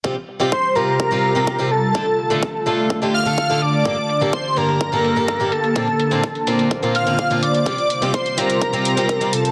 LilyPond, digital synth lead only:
\new Staff \with { instrumentName = "Digital synth lead" } { \time 4/4 \key c \mixolydian \tempo 4 = 126 r4 c''8 bes'2 a'8~ | a'4. r4 f''4 d''8~ | d''4 c''8 bes'2 a'8~ | a'4. r4 f''4 d''8~ |
d''4 c''8 bes'2 a'8 | }